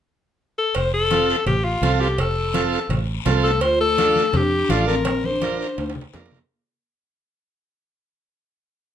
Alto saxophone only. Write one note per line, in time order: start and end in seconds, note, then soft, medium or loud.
0.58 0.78 A4 medium
0.76 0.93 C5 loud
0.94 1.43 A4 loud
1.47 1.66 G4 medium
1.64 2.02 F4 medium
2.01 2.22 G4 medium
2.20 2.91 A4 medium
3.43 3.62 A4 loud
3.61 3.80 C5 loud
3.81 4.38 A4 loud
4.37 4.72 G4 loud
4.70 4.87 F4 medium
4.87 5.27 A#4 medium
5.25 5.59 C5 loud
5.60 5.93 C5 medium